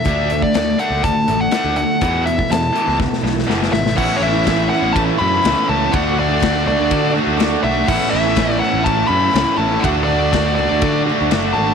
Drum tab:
CC |----------------|----------------|x---------------|----------------|
RD |----------------|----------------|----b---b---b---|b---b---b---b---|
HH |x-x-x-x-x-x-x-x-|x-x-x-x---------|----------------|----------------|
SD |----o-------o---|----o--ooooooooo|----ooo-----o---|----oo------o---|
BD |o--o----o-------|o--o----o-------|o---o---o-------|o---o---o-------|

CC |x---------------|----------------|
RD |----b---b---b---|b---b---b---b---|
HH |----------------|----------------|
SD |----ooo-----o---|----oo------o---|
BD |o---o---o-------|o---o---o-------|